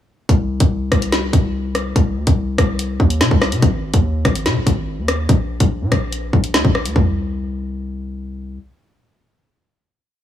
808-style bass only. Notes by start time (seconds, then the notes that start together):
0.29 C2
0.60 C2
0.92 C2
1.33 C2
1.96 C2
2.17 D2
2.27 C2
2.58 C2
3.00 D#2
3.21 C3
3.31 C2
3.52 C3
3.62 G#1
3.94 D#2
4.25 G#1
4.46 C3
4.56 G#1
4.67 G#1
4.98 D#2
5.29 A#1
5.60 A#1
5.81 A#2
5.92 A#1
6.33 A#1
6.54 D2
6.65 A#1
6.85 D2
6.96 C2